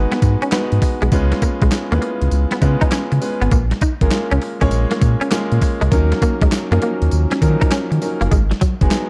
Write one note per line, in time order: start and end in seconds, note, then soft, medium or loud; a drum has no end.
0.00 0.52 G#3 loud
0.00 0.52 B3 medium
0.00 0.53 D#4 medium
0.00 0.53 F#4 medium
0.00 0.53 B4 loud
0.12 0.18 B3 medium
0.12 snare medium
0.12 closed hi-hat medium
0.22 0.36 G#2 loud
0.22 muted clean electric guitar stroke soft
0.22 kick medium
0.22 closed hi-hat medium
0.22 tambourine medium
0.42 0.48 C#4 medium
0.42 closed hi-hat medium
0.52 0.99 G#3 medium
0.52 0.99 B3 medium
0.52 0.64 B3 medium
0.52 1.00 D#4 medium
0.52 1.00 F#4 medium
0.52 1.00 B4 loud
0.52 snare loud
0.52 clap medium
0.52 closed hi-hat medium
0.52 tambourine loud
0.72 0.79 G#2 loud
0.72 closed hi-hat medium
0.82 muted clean electric guitar stroke soft
0.82 kick medium
0.82 open hi-hat medium
0.82 tambourine medium
1.02 1.10 B1 medium
1.02 1.08 G#3 medium
1.02 closed hi-hat medium
1.12 1.33 C#2 loud
1.12 1.68 G#3 loud
1.12 1.68 B3 medium
1.12 1.68 C#4 loud
1.12 1.68 F4 loud
1.12 1.68 B4 loud
1.12 kick loud
1.12 closed hi-hat medium
1.12 tambourine medium
1.32 muted clean electric guitar stroke soft
1.32 snare medium
1.32 closed hi-hat soft
1.42 1.54 A#3 medium
1.42 kick medium
1.42 closed hi-hat medium
1.42 tambourine medium
1.62 1.69 B1 medium
1.62 1.68 G#3 medium
1.62 kick loud
1.62 closed hi-hat medium
1.72 muted clean electric guitar stroke soft
1.72 snare loud
1.72 clap loud
1.72 closed hi-hat medium
1.72 tambourine loud
1.91 1.99 D#2 loud
1.91 2.43 G#3 medium
1.91 1.98 A#3 medium
1.91 2.44 B3 medium
1.91 2.44 C#4 medium
1.91 1.96 E4 medium
1.91 2.44 B4 loud
1.91 closed hi-hat medium
1.99 2.13 A#3 medium
1.99 2.47 F4 medium
1.99 closed hi-hat medium
2.21 2.29 C#2 medium
2.21 closed hi-hat medium
2.31 2.46 C#2 loud
2.31 closed hi-hat medium
2.31 tambourine medium
2.51 2.58 B3 medium
2.51 snare medium
2.51 closed hi-hat medium
2.62 2.76 C#3 loud
2.62 3.09 G#3 medium
2.62 3.09 B3 medium
2.62 3.09 C#4 medium
2.62 3.10 F4 medium
2.62 3.10 B4 loud
2.62 muted clean electric guitar stroke soft
2.62 kick medium
2.62 closed hi-hat medium
2.62 tambourine medium
2.81 2.87 D#4 medium
2.81 kick loud
2.81 closed hi-hat medium
2.92 3.03 C#4 medium
2.92 snare loud
2.92 clap medium
2.92 closed hi-hat medium
2.92 tambourine loud
3.12 3.19 C#3 loud
3.12 muted clean electric guitar stroke soft
3.12 closed hi-hat medium
3.21 3.51 G#3 medium
3.21 3.51 B3 medium
3.21 3.52 C#4 medium
3.21 3.52 F4 medium
3.21 3.52 B4 loud
3.21 open hi-hat medium
3.21 tambourine medium
3.41 3.49 G#1 loud
3.41 3.47 B3 medium
3.41 closed hi-hat soft
3.51 3.73 A#1 loud
3.51 3.63 A#3 medium
3.51 kick loud
3.51 closed hi-hat medium
3.51 tambourine medium
3.71 muted clean electric guitar stroke soft
3.71 snare medium
3.71 closed hi-hat soft
3.81 3.93 D#4 medium
3.81 kick loud
3.81 closed hi-hat medium
3.81 tambourine medium
4.01 4.09 G#1 medium
4.01 4.40 G#3 medium
4.01 4.41 A#3 medium
4.01 4.41 C#4 medium
4.01 4.41 F4 medium
4.01 4.41 A#4 medium
4.01 kick loud
4.01 closed hi-hat medium
4.11 snare loud
4.11 clap medium
4.11 closed hi-hat medium
4.11 tambourine loud
4.31 4.39 C#2 loud
4.31 4.37 C#4 medium
4.31 closed hi-hat medium
4.42 muted clean electric guitar stroke soft
4.42 open hi-hat medium
4.61 4.69 A#1 medium
4.61 5.13 G#3 loud
4.61 5.13 A#3 medium
4.61 4.67 C#4 medium
4.61 5.13 C#4 medium
4.61 5.14 F4 medium
4.61 5.14 C#5 loud
4.61 kick medium
4.61 closed hi-hat medium
4.71 4.86 A#1 loud
4.71 closed hi-hat medium
4.71 tambourine medium
4.91 4.97 A#3 medium
4.91 snare medium
4.91 closed hi-hat medium
5.01 5.16 A#2 loud
5.01 muted clean electric guitar stroke medium
5.01 kick medium
5.01 closed hi-hat medium
5.01 tambourine medium
5.21 5.27 C#4 medium
5.21 closed hi-hat medium
5.31 5.79 G#3 loud
5.31 5.43 A#3 medium
5.31 5.79 A#3 medium
5.31 5.79 C#4 medium
5.31 5.79 F4 medium
5.31 5.79 A#4 loud
5.31 snare loud
5.31 clap medium
5.31 closed hi-hat medium
5.31 tambourine loud
5.52 5.59 A#2 loud
5.52 closed hi-hat medium
5.62 muted clean electric guitar stroke soft
5.62 kick medium
5.62 open hi-hat medium
5.62 tambourine medium
5.81 5.89 C#2 loud
5.81 5.87 G#3 medium
5.81 closed hi-hat soft
5.91 6.13 D#2 loud
5.91 6.47 F#3 loud
5.91 6.47 A#3 loud
5.91 6.48 C#4 loud
5.91 6.48 D#4 loud
5.91 6.48 A#4 loud
5.91 kick loud
5.91 closed hi-hat medium
5.91 tambourine medium
6.12 muted clean electric guitar stroke soft
6.12 snare medium
6.12 closed hi-hat soft
6.22 6.34 A#3 medium
6.22 kick medium
6.22 closed hi-hat medium
6.22 tambourine medium
6.41 6.49 C#2 medium
6.41 6.48 G#3 medium
6.41 kick loud
6.41 closed hi-hat medium
6.52 muted clean electric guitar stroke soft
6.52 snare loud
6.52 clap loud
6.52 closed hi-hat medium
6.52 tambourine medium
6.71 6.79 F#2 loud
6.71 6.76 F3 medium
6.71 7.23 A#3 medium
6.71 6.78 A#3 medium
6.71 7.24 C#4 medium
6.71 7.24 D#4 medium
6.71 7.24 A#4 loud
6.71 closed hi-hat medium
6.77 7.26 F#3 medium
6.82 6.94 A#3 medium
6.82 closed hi-hat medium
7.02 7.09 D#2 loud
7.02 closed hi-hat medium
7.11 7.27 D#2 loud
7.11 closed hi-hat medium
7.11 tambourine medium
7.31 7.38 C#4 medium
7.31 snare medium
7.31 closed hi-hat medium
7.42 7.56 D#3 loud
7.42 7.50 F3 medium
7.42 7.89 A#3 medium
7.42 7.89 C#4 medium
7.42 7.89 D#4 medium
7.42 7.90 A#4 loud
7.42 muted clean electric guitar stroke soft
7.42 kick medium
7.42 closed hi-hat medium
7.42 tambourine medium
7.48 7.92 F#3 loud
7.61 7.67 D#4 medium
7.61 kick loud
7.61 closed hi-hat medium
7.71 7.83 C#4 medium
7.71 snare loud
7.71 clap medium
7.71 closed hi-hat medium
7.71 tambourine loud
7.91 7.99 D#3 loud
7.91 muted clean electric guitar stroke soft
7.91 closed hi-hat medium
8.02 8.32 F#3 medium
8.02 8.32 A#3 medium
8.02 8.32 C#4 medium
8.02 8.32 D#4 medium
8.02 8.32 A#4 loud
8.02 open hi-hat medium
8.02 tambourine medium
8.21 8.29 F#1 medium
8.21 8.27 A#3 medium
8.21 closed hi-hat medium
8.31 8.53 G#1 loud
8.31 8.43 G#3 medium
8.31 kick loud
8.31 closed hi-hat medium
8.31 tambourine medium
8.51 muted clean electric guitar stroke soft
8.51 snare medium
8.51 closed hi-hat soft
8.61 8.73 F#3 medium
8.61 kick loud
8.61 closed hi-hat medium
8.61 tambourine medium
8.81 8.89 F#1 medium
8.81 9.10 F#3 medium
8.81 9.10 G#3 medium
8.81 9.10 B3 medium
8.81 9.10 D#4 medium
8.81 9.10 G#4 loud
8.81 kick loud
8.81 closed hi-hat medium
8.91 snare loud
8.91 clap medium
8.91 closed hi-hat medium
8.91 tambourine loud